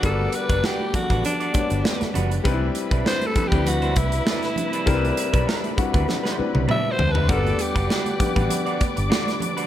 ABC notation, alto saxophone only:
X:1
M:4/4
L:1/8
Q:"Swing 16ths" 1/4=99
K:G
V:1 name="Alto saxophone"
A B G F D3 z | z2 (3c A G F E3- | E2 z4 (3e c B | A G4- G z2 |]